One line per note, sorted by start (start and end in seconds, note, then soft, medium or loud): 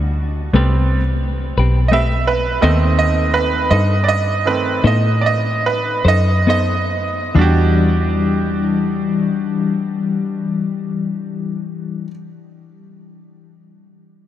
0.00 0.50 D2 loud
0.00 0.50 G3 soft
0.00 0.50 D4 soft
0.00 0.50 F#4 medium
0.53 1.54 C2 medium
0.53 1.00 G3 soft
0.53 0.75 A3 medium
0.53 1.00 B3 soft
0.53 1.00 C4 medium
0.53 0.75 C4 medium
0.53 0.76 G4 loud
0.53 0.76 B4 loud
1.57 2.59 B1 medium
1.57 1.80 C4 medium
1.57 1.79 G4 medium
1.57 1.78 B4 medium
1.88 2.13 A3 medium
1.88 2.13 C4 medium
1.88 1.92 D#5 medium
1.93 2.14 G4 medium
1.93 2.14 B4 medium
1.93 2.26 E5 medium
2.27 2.61 B4 medium
2.61 3.67 D#2 loud
2.61 3.66 D#3 soft
2.61 3.66 A3 soft
2.61 2.84 B3 medium
2.61 3.66 C4 medium
2.61 2.84 D#4 medium
2.61 2.84 A4 medium
2.61 2.84 C5 loud
2.61 2.97 D#5 medium
2.99 3.33 D#5 medium
3.34 3.69 B4 medium
3.71 4.81 G2 loud
3.71 3.94 D#4 soft
3.71 3.94 A4 soft
3.71 3.93 C5 medium
3.71 4.06 D#5 medium
4.04 4.08 D5 medium
4.08 4.45 D#5 medium
4.45 4.80 D#3 soft
4.45 4.80 A3 soft
4.45 4.81 C4 soft
4.45 4.84 B4 medium
4.84 6.02 A2 loud
4.84 5.08 B3 medium
4.84 5.07 D#4 medium
4.84 5.08 A4 loud
4.84 5.08 C5 loud
4.84 5.24 D#5 medium
5.21 5.26 D5 medium
5.26 5.64 D#5 medium
5.66 6.05 B4 medium
6.05 7.33 F#2 medium
6.05 6.32 D#4 soft
6.05 6.31 A4 medium
6.05 6.30 C5 medium
6.05 6.48 D#5 medium
6.47 6.73 B3 medium
6.47 6.74 D#4 medium
6.47 6.74 A4 medium
6.47 6.74 C5 medium
6.47 7.35 D#5 medium
7.35 12.05 E2 loud
7.35 12.08 E3 medium
7.35 12.11 G3 medium
7.35 12.04 D4 medium
7.35 12.08 F#4 medium
7.41 12.14 D4 medium
7.41 12.10 G4 medium